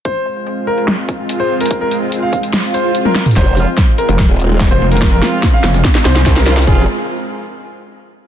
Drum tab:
HH |----x---x---x-x-x---x---x-----xx|x---x---x---x-x-x---x---x-----xx|x---x---x---x-x-x---x---x-----xx|x---x---x---x-x-x---x---x-----xx|
SD |----------------o---------------|----------------o-----------o---|o-------o-------o-------o-------|o---o---o---o---o-o-o-o-o-o-o-o-|
T1 |--------------------------------|--------------------------o-----|--------------------------------|--------------------------------|
T2 |--------------------------------|------------------------------o-|--------------------------------|--------------------------------|
BD |o-------------------o-----------|o-----------o-------------------|o-------o-------o-------o-------|o-------o-------o-------o-------|

HH |o-------------------------------|
SD |--------------------------------|
T1 |--------------------------------|
T2 |--------------------------------|
BD |o-------------------------------|